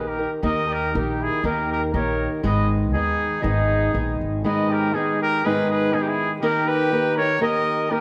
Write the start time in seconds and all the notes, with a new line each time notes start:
Already playing: A#1 D#3 A#3 D#4 G4 A#4
0.08 G4 A#4
0.19 D#4 G4 A#4
0.42 D#2 D#3 A#3 D#4 G4 A#4 D#5
0.68 G4
0.73 A#4
0.93 A#1 A#3 D#4 G4 A#4
0.98 G4
1.21 E4 G#4
1.43 D#2 D#3 A#3 D#4 G4 A#4
1.72 G4 A#4
1.93 A#1 A#3 D#4 G4 A#4 C#5
2.43 G#1 G#2 D#3 G#3 B3 D#4 G#4 B4 D#5
2.94 D#2 G#3 B3 D#4 G#4
3.42 G#1 G#2 D#3 G#3 B3 D#4 G#4
3.94 A#1 G#3 B3 D#4 G#4
4.21 G#1
4.44 G#2 D#3 G#3 B3 D#4 G#4 B4 D#5
4.70 G4 A#4
4.93 G#3 B3 D#4 G#4
5.22 G4 A#4
5.45 G#2 D#3 G#3 B3 D#4 G#4 B4
5.71 G#4 B4
5.93 G#3 B3 D#4 G#4
6.00 D#4 G4
6.07 E4 G#4
6.40 D#3 A#3 D#4 G4 A#4
6.68 G4 B4
6.92 A#3 D#4 G4 A#4
7.16 D#4 G4 A#4 C#5
7.40 D#3 A#3 D#4 G4 A#4 D#5
7.90 A#3 D#4 G4 A#4